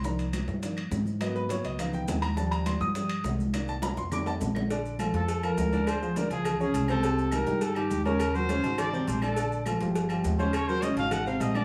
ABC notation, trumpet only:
X:1
M:4/4
L:1/8
Q:1/4=206
K:Bb
V:1 name="Trumpet"
z8 | z8 | z8 | z8 |
z3 A2 B3 | c2 B _A2 A2 =A- | A2 B2 A G2 B- | B c3 d2 c A- |
A2 z4 z c | _d c e f _g f e =d |]